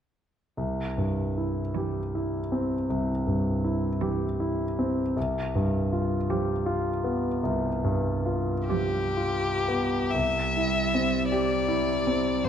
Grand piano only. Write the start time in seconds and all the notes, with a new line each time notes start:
0.57 C2
0.98 G2
1.38 E4
1.77 G4
2.15 E4
2.52 C4
2.90 C2
3.27 G2
3.64 E4
4.01 G4
4.40 E4
4.79 C4
5.17 C2
5.55 G2
5.93 F4
6.30 G4
6.66 F4
7.04 B3
7.43 C2
7.84 G2
8.26 F4
8.69 G4
9.17 F4
9.68 B3
10.14 C2
10.57 E4
10.94 C4
11.32 G4
11.68 E4
12.07 C4
12.44 A1